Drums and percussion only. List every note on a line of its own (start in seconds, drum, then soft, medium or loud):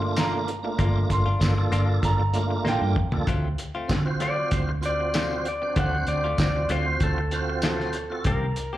0.16 snare loud
0.16 closed hi-hat medium
0.16 tambourine loud
0.48 closed hi-hat medium
0.79 kick loud
0.79 closed hi-hat medium
1.10 kick medium
1.10 closed hi-hat medium
1.41 kick medium
1.41 snare loud
1.41 closed hi-hat medium
1.41 tambourine loud
1.72 closed hi-hat medium
2.03 kick medium
2.03 closed hi-hat medium
2.34 closed hi-hat medium
2.66 snare medium
2.96 kick medium
3.12 floor tom medium
3.27 kick loud
3.27 closed hi-hat medium
3.58 closed hi-hat medium
3.89 kick medium
3.89 snare loud
3.89 closed hi-hat medium
3.89 tambourine loud
4.20 closed hi-hat medium
4.51 kick medium
4.51 closed hi-hat medium
4.83 closed hi-hat medium
5.14 snare loud
5.14 closed hi-hat medium
5.14 tambourine loud
5.45 closed hi-hat medium
5.76 kick loud
5.76 closed hi-hat medium
6.07 closed hi-hat medium
6.38 kick medium
6.38 snare loud
6.38 closed hi-hat medium
6.38 tambourine loud
6.69 closed hi-hat medium
7.00 kick medium
7.00 closed hi-hat medium
7.31 closed hi-hat medium
7.62 snare loud
7.62 closed hi-hat medium
7.62 tambourine loud
7.80 snare soft
7.93 closed hi-hat medium
8.24 kick loud
8.24 closed hi-hat medium
8.56 closed hi-hat medium